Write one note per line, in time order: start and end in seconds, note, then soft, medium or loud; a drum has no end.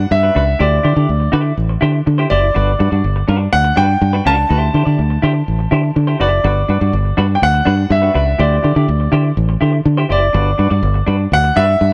0.00 0.12 F#5 loud
0.11 0.29 G2 loud
0.11 0.62 E5 medium
0.11 muted clean electric guitar stroke soft
0.23 0.34 D4 soft
0.23 0.35 F#4 medium
0.23 0.35 B4 soft
0.35 0.54 C#2 medium
0.35 0.51 D4 medium
0.35 0.47 F#4 medium
0.35 0.46 B4 loud
0.47 muted clean electric guitar stroke soft
0.59 0.78 D2 loud
0.59 0.76 E4 medium
0.59 0.76 G4 medium
0.59 0.76 C5 medium
0.59 1.54 D5 medium
0.83 0.94 D3 medium
0.83 0.95 E4 medium
0.83 0.95 G4 medium
0.83 0.95 C5 medium
0.95 1.06 D3 loud
0.95 1.09 E4 soft
0.95 1.09 G4 medium
0.95 1.08 D5 medium
1.09 1.27 D2 medium
1.20 muted clean electric guitar stroke soft
1.32 1.51 D3 loud
1.32 1.53 E4 medium
1.32 1.44 G4 medium
1.32 1.44 C5 medium
1.45 muted clean electric guitar stroke soft
1.57 1.76 A1 medium
1.69 muted clean electric guitar stroke medium
1.81 2.00 D3 medium
1.81 1.97 E4 medium
1.81 1.93 G4 medium
1.81 1.92 C5 loud
1.94 muted clean electric guitar stroke medium
2.06 2.25 D3 medium
2.06 muted clean electric guitar stroke soft
2.18 2.29 E4 medium
2.18 2.30 G4 medium
2.18 2.30 C5 medium
2.30 2.49 F#1 medium
2.30 2.46 E4 medium
2.30 2.42 G4 medium
2.30 2.41 C5 loud
2.30 3.56 D5 medium
2.42 muted clean electric guitar stroke soft
2.54 2.74 G1 loud
2.54 2.71 D4 medium
2.54 2.71 F#4 medium
2.54 2.71 B4 medium
2.79 2.89 G2 loud
2.79 2.92 D4 medium
2.79 2.91 F#4 medium
2.79 2.91 B4 medium
2.91 3.01 G2 medium
2.91 3.05 D4 soft
2.91 3.04 F#4 medium
2.91 3.04 D5 medium
3.04 3.22 G1 medium
3.16 muted clean electric guitar stroke soft
3.28 3.46 G2 loud
3.28 3.48 D4 medium
3.28 3.40 F#4 medium
3.28 3.39 B4 medium
3.40 muted clean electric guitar stroke soft
3.53 3.71 D2 medium
3.53 3.78 F#5 loud
3.65 muted clean electric guitar stroke soft
3.76 3.95 G2 medium
3.76 3.92 D4 medium
3.76 3.89 F#4 loud
3.76 3.88 B4 medium
3.76 4.27 G5 medium
3.89 muted clean electric guitar stroke soft
4.01 4.20 G2 loud
4.01 muted clean electric guitar stroke soft
4.13 4.24 D4 soft
4.13 4.25 F#4 medium
4.13 4.26 B4 medium
4.25 4.44 C#2 medium
4.25 4.45 D4 medium
4.25 4.38 F#4 loud
4.25 4.37 B4 loud
4.25 6.27 A5 loud
4.38 muted clean electric guitar stroke soft
4.49 4.68 D2 loud
4.49 4.70 E4 medium
4.49 4.70 G4 medium
4.49 4.70 C5 medium
4.73 4.83 D3 loud
4.73 4.86 E4 medium
4.73 4.85 G4 medium
4.73 4.85 C5 medium
4.85 4.96 D3 medium
4.85 4.99 E4 soft
4.85 4.99 G4 soft
4.85 4.98 D5 medium
4.99 5.17 D2 medium
5.10 muted clean electric guitar stroke soft
5.22 5.41 D3 loud
5.22 5.39 E4 medium
5.22 5.35 G4 medium
5.22 5.34 C5 loud
5.35 muted clean electric guitar stroke medium
5.48 5.66 A1 medium
5.59 muted clean electric guitar stroke soft
5.71 5.90 D3 medium
5.71 5.87 E4 medium
5.71 5.83 G4 medium
5.71 5.82 C5 medium
5.83 muted clean electric guitar stroke medium
5.96 6.14 D3 loud
5.96 muted clean electric guitar stroke soft
6.07 6.19 E4 medium
6.07 6.19 G4 medium
6.07 6.20 C5 medium
6.20 6.38 F#1 medium
6.20 6.40 E4 medium
6.20 6.31 G4 medium
6.20 6.30 C5 medium
6.20 7.39 D5 medium
6.31 muted clean electric guitar stroke soft
6.44 6.63 G1 loud
6.44 6.60 D4 medium
6.44 6.61 F#4 medium
6.44 6.61 B4 medium
6.68 6.78 G2 medium
6.68 6.81 D4 medium
6.68 6.80 F#4 medium
6.68 6.81 B4 medium
6.81 6.90 G2 loud
6.81 6.94 D4 soft
6.81 6.94 F#4 medium
6.81 6.94 D5 medium
6.93 7.11 G1 loud
7.05 muted clean electric guitar stroke soft
7.17 7.36 G2 loud
7.17 7.33 D4 medium
7.17 7.29 F#4 loud
7.17 7.28 B4 medium
7.29 muted clean electric guitar stroke soft
7.35 7.42 G5 medium
7.42 7.60 D2 medium
7.42 7.93 F#5 loud
7.54 muted clean electric guitar stroke medium
7.65 7.85 G2 medium
7.65 7.82 D4 medium
7.65 7.77 F#4 medium
7.65 7.76 B4 medium
7.78 muted clean electric guitar stroke medium
7.90 8.09 G2 loud
7.90 8.42 E5 medium
7.90 muted clean electric guitar stroke soft
8.02 8.13 D4 soft
8.02 8.13 F#4 medium
8.02 8.14 B4 medium
8.14 8.33 C#2 medium
8.14 8.31 D4 medium
8.14 8.26 F#4 medium
8.14 8.25 B4 medium
8.26 muted clean electric guitar stroke medium
8.39 8.58 D2 loud
8.39 8.55 E4 medium
8.39 8.55 G4 medium
8.39 8.56 C5 medium
8.39 9.33 D5 medium
8.63 8.73 D3 medium
8.63 8.75 E4 medium
8.63 8.75 G4 medium
8.63 8.75 C5 medium
8.75 8.85 D3 loud
8.75 8.89 E4 soft
8.75 8.89 G4 soft
8.75 8.88 D5 medium
8.88 9.07 D2 loud
9.00 muted clean electric guitar stroke soft
9.12 9.31 D3 medium
9.12 9.28 E4 medium
9.12 9.25 G4 medium
9.12 9.24 C5 medium
9.25 muted clean electric guitar stroke soft
9.37 9.55 A1 medium
9.49 muted clean electric guitar stroke soft
9.61 9.80 D3 medium
9.61 9.77 E4 medium
9.61 9.73 G4 medium
9.61 9.72 C5 medium
9.73 muted clean electric guitar stroke soft
9.85 10.04 D3 medium
9.85 muted clean electric guitar stroke soft
9.97 10.08 E4 medium
9.97 10.09 G4 medium
9.97 10.09 C5 medium
10.09 10.28 F#1 medium
10.09 10.26 E4 medium
10.09 10.21 G4 medium
10.09 10.20 C5 medium
10.09 11.37 D5 medium
10.21 muted clean electric guitar stroke soft
10.33 10.53 G1 loud
10.33 10.50 D4 medium
10.33 10.50 F#4 medium
10.33 10.51 B4 medium
10.58 10.68 G2 medium
10.58 10.71 D4 medium
10.58 10.70 F#4 medium
10.58 10.70 B4 medium
10.70 10.80 G2 loud
10.70 10.84 D4 soft
10.70 10.84 F#4 soft
10.70 10.83 D5 medium
10.83 11.01 G1 loud
10.94 muted clean electric guitar stroke soft
11.07 11.26 G2 medium
11.07 11.23 D4 medium
11.07 11.19 F#4 medium
11.07 11.18 B4 medium
11.19 muted clean electric guitar stroke medium
11.32 11.50 D2 medium
11.32 11.58 F#5 loud
11.44 muted clean electric guitar stroke medium
11.56 11.75 G2 medium
11.56 11.72 D4 medium
11.56 11.68 F#4 medium
11.56 11.67 B4 medium
11.56 11.93 E5 loud
11.68 muted clean electric guitar stroke soft
11.80 11.93 G2 loud
11.80 muted clean electric guitar stroke soft